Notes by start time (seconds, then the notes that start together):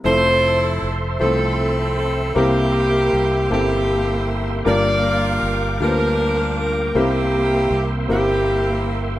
0.04 F1 F3 A3 C4 E4 A4 C5 E5 C6
0.82 F1
1.19 C2 F3 A3 C4 E4 A4 C5
1.98 A4
2.35 C2 C3 A#3 C4 E4 G4 A#4 G5 C6
3.13 C2
3.50 G1 A#3 C4 E4 G4 A4
4.64 G1 G2 A#3 D4 F4 G4 A#4 D5 F5 D6
4.68 A#4
5.43 G1
5.80 D2 A#3 D4 F4 G4 A#4 B4
5.88 C5
6.60 A#4
6.95 C2 C3 A#3 C4 E4 G4 A#4 E5 C6
7.71 C2
8.08 G1 A#3 C4 E4 G4 A#4